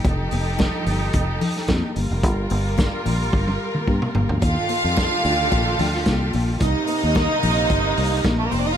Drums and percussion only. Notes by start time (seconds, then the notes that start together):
0.04 kick, closed hi-hat, muted conga
0.31 open hi-hat, muted conga
0.59 kick, snare, closed hi-hat, high conga
0.87 open hi-hat
1.13 kick, closed hi-hat, muted conga
1.41 open hi-hat, low conga
1.56 snare
1.68 kick, snare, closed hi-hat, high conga
1.96 open hi-hat, high conga
2.23 kick, closed hi-hat, muted conga
2.50 open hi-hat, muted conga
2.78 kick, snare, closed hi-hat, high conga
3.06 open hi-hat, low conga
3.33 kick, high tom, muted conga
3.48 high tom
3.75 mid tom
3.88 kick, high conga
4.02 mid tom
4.15 floor tom, high conga
4.29 floor tom
4.42 kick, closed hi-hat, muted conga
4.69 open hi-hat, muted conga
4.97 kick, snare, closed hi-hat, high conga
5.25 open hi-hat
5.52 kick, closed hi-hat, muted conga
5.79 open hi-hat, low conga
5.94 snare
6.06 kick, snare, closed hi-hat, high conga
6.33 open hi-hat, high conga
6.60 kick, closed hi-hat, muted conga
6.87 open hi-hat, muted conga
7.15 kick, snare, closed hi-hat, high conga
7.43 open hi-hat, low conga
7.70 kick, closed hi-hat
7.97 open hi-hat
8.12 snare
8.24 kick, snare, closed hi-hat, high conga
8.52 open hi-hat, high conga